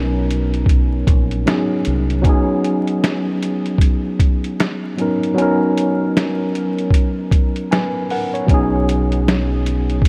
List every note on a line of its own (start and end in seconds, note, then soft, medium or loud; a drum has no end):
0.00 1.04 B1 loud
0.00 1.41 F#3 medium
0.00 1.42 B3 medium
0.00 1.43 C#4 medium
0.00 1.44 D#4 medium
0.00 1.45 A#4 medium
0.31 closed hi-hat medium
0.54 closed hi-hat soft
0.66 kick medium
0.66 closed hi-hat medium
1.07 1.44 A#1 medium
1.07 kick medium
1.07 closed hi-hat medium
1.31 closed hi-hat soft
1.46 2.20 F#3 medium
1.46 2.22 B3 soft
1.46 2.24 C#4 medium
1.46 2.26 D#4 medium
1.46 2.26 G#4 medium
1.46 snare loud
1.46 closed hi-hat medium
1.85 2.23 C2 medium
1.85 closed hi-hat medium
2.10 closed hi-hat soft
2.21 4.92 F#3 medium
2.21 4.93 B3 medium
2.21 4.94 C#4 medium
2.21 kick loud
2.21 closed hi-hat medium
2.27 4.95 D#4 medium
2.27 4.96 G#4 medium
2.64 closed hi-hat medium
2.87 closed hi-hat soft
3.04 snare loud
3.04 closed hi-hat medium
3.43 closed hi-hat medium
3.66 closed hi-hat soft
3.78 kick medium
3.78 closed hi-hat medium
4.20 kick medium
4.20 closed hi-hat medium
4.44 closed hi-hat soft
4.60 snare loud
4.60 closed hi-hat medium
4.98 5.33 F#3 medium
4.98 5.35 B3 soft
4.98 5.37 C#4 medium
4.98 5.38 D#4 medium
4.98 5.38 A#4 medium
4.98 closed hi-hat medium
5.23 closed hi-hat soft
5.34 8.43 F#3 medium
5.34 8.44 B3 medium
5.34 8.45 C#4 medium
5.38 8.46 D#4 medium
5.38 7.69 A#4 medium
5.38 closed hi-hat medium
5.78 closed hi-hat medium
6.17 snare loud
6.17 closed hi-hat medium
6.55 closed hi-hat medium
6.78 closed hi-hat soft
6.91 kick medium
6.91 closed hi-hat medium
7.31 kick medium
7.31 closed hi-hat medium
7.56 closed hi-hat soft
7.71 8.08 B4 medium
7.71 8.08 G#5 medium
7.71 snare loud
7.71 closed hi-hat medium
8.10 8.33 A#4 medium
8.10 8.33 F#5 medium
8.10 open hi-hat soft
8.34 8.70 C#5 medium
8.34 closed hi-hat soft
8.47 10.08 B1 loud
8.47 10.08 F#3 medium
8.47 10.08 B3 medium
8.47 10.08 C#4 medium
8.47 kick loud
8.47 closed hi-hat medium
8.52 10.08 D#4 medium
8.52 10.08 G#4 medium
8.89 closed hi-hat medium
9.12 closed hi-hat soft
9.28 snare loud
9.28 closed hi-hat medium
9.66 closed hi-hat medium
9.90 closed hi-hat soft
10.02 kick medium
10.02 closed hi-hat medium